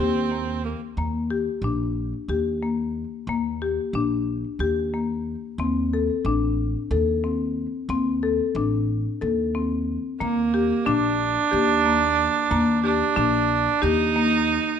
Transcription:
Already playing: C4 G4
0.00 D#2
0.32 A#3
0.65 A#3
0.97 D#2 A#3
1.30 G4
1.62 A#1 D4
2.28 D#2 G4
2.63 A#3
3.27 D#2 A#3
3.62 G4
3.93 A#1 D4
4.59 D#2 G4
4.94 A#3
5.58 D#2 C4
5.93 A4
6.25 A1 D4
6.91 D#2 A4
7.24 C4
7.89 D#2 C4
8.23 A4
8.55 A1 D4
9.21 D#2 A4
9.55 C4
10.20 D#2 A#3
10.54 G4
10.86 A#1 D4
11.51 D#2 G4
11.86 A#3
12.51 D#2 A#3
12.83 D4 G4
13.16 A#1 D4
13.81 D#2 D#4 G4
14.16 A#3

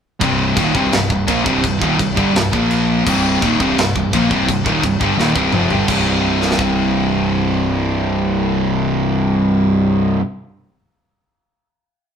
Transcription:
0.20 C1 C2 G2 C3, kick, china
0.56 D#1 D#2 A#2 D#3, kick, china
0.74 C1 C2 G2 C3, kick
0.92 C1 C2 G2, snare, china
1.09 C1 C2 G2, kick
1.27 A#1 A#2 F3 A#3, kick, china
1.46 C1 C2 G2 C3, kick
1.64 C1 C2 G2, kick, china
1.78 D#1 D#2 A#2, kick
1.82 D#2 A#2 D#3
1.96 C1 C2 G2, kick
2.00 C2, china
2.16 G1 G2 D3 G3, kick
2.33 C1 C2 G2, snare, china
2.52 A#1 A#2 F3 A#3, kick
2.71 china
3.07 C1 C2 G2 C3, kick, china, crash
3.42 D#1 D#2 A#2 D#3, kick, china
3.60 C1 C2 G2 C3, kick
3.77 C1 C2 G2, snare, china
3.96 C1 C2 G2, kick
4.13 A#1 A#2 F3 A#3, kick, china
4.31 C1 C2 G2 C3, kick
4.49 C1 C2 G2, kick, china
4.66 D#1 D#2 A#2 D#3, kick
4.83 C1 C2 G2, kick, china
5.01 G1 G2 D3 G3, kick
5.17 D#1 D#2 A#2 D#3, snare
5.35 C1 C2 G2 C3, kick
5.52 F1 F2 C3 F3, mid tom
5.70 G1 G2 D3 G3, floor tom
5.87 C1 C2 G2, kick, crash
5.91 C3
6.42 snare
6.51 snare
6.59 kick

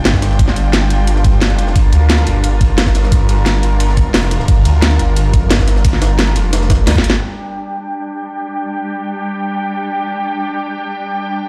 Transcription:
Already playing: G3 D4 F4 G5
0.05 G1, snare, closed hi-hat, ride
0.14 kick, snare
0.22 snare, closed hi-hat, ride
0.31 snare
0.39 kick, closed hi-hat, ride
0.48 snare
0.56 closed hi-hat, ride
0.73 snare, closed hi-hat, ride
0.90 G1, closed hi-hat, ride
1.07 closed hi-hat, ride
1.16 snare
1.24 kick, closed hi-hat, ride
1.41 snare, closed hi-hat, ride
1.49 F#1, ride
1.59 closed hi-hat, ride
1.67 snare
1.76 G1 A#4, kick, closed hi-hat, ride
1.93 D2, closed hi-hat, ride
2.10 snare, closed hi-hat, ride
2.18 ride
2.27 G1, closed hi-hat, ride
2.44 closed hi-hat, ride
2.61 kick, closed hi-hat, ride
2.78 G1, snare, closed hi-hat, ride
2.86 kick, snare
2.95 snare, closed hi-hat, ride
3.03 snare
3.12 kick, closed hi-hat, ride
3.29 closed hi-hat, ride
3.46 snare, closed hi-hat, ride
3.63 G1, closed hi-hat, ride
3.80 closed hi-hat, ride
3.89 snare
3.97 kick, closed hi-hat, ride
4.14 F1, snare, closed hi-hat, open hi-hat
4.23 ride
4.31 closed hi-hat, ride
4.40 snare
4.48 G1, kick, closed hi-hat, ride
4.65 D2, closed hi-hat, ride
4.82 snare, closed hi-hat, ride
4.91 ride
4.99 G1, closed hi-hat, ride
5.16 closed hi-hat, ride
5.34 kick, closed hi-hat, ride
5.51 G1, snare, closed hi-hat, ride
5.59 kick, snare
5.68 snare, closed hi-hat, ride
5.76 snare
5.85 kick, closed hi-hat, ride
5.93 snare
6.02 snare, closed hi-hat, ride
6.19 snare, closed hi-hat, ride
6.27 ride
6.36 F1, closed hi-hat, ride
6.53 snare, closed hi-hat, ride
6.62 snare
6.70 kick, snare, closed hi-hat, ride
6.87 D2, snare, closed hi-hat, open hi-hat
6.95 kick, snare, ride
7.04 G1, closed hi-hat, ride
7.10 snare
7.13 snare
7.21 G3 D4 G4 G5

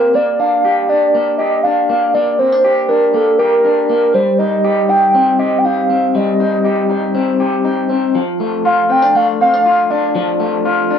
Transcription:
Already playing: A#3 C4 G4 A#4
0.14 A#3 D5
0.39 D4 F5
0.65 G4
0.89 D4 D5
1.15 A#3
1.38 G4 D#5
1.63 D4 F5
1.90 A#3
2.14 A#3 D5
2.39 C4 C5
2.52 D4
2.64 G4
2.89 D4 A#4
3.14 A#3 A4
3.39 G4 A#4
3.64 D4
3.90 A#3
4.14 G3 C5
4.38 D#4 D#5
4.64 G4
4.89 D#4 G5
5.15 C4
5.39 G4 D#5
5.59 G5
5.65 D#4 F5
5.90 C4
6.15 G3 D#5
6.40 D#4
6.65 G4
6.90 D#4
7.15 C4
7.40 G4
7.65 D#4
7.90 C4
8.15 F3
8.40 A3
8.65 F4 F5
8.90 C4 G5
9.02 D4
9.15 A3 F5
9.41 C4 F5
9.54 D4
9.66 F4
9.90 D4 D5
10.15 F3
10.40 A3
10.65 F4
10.91 D4

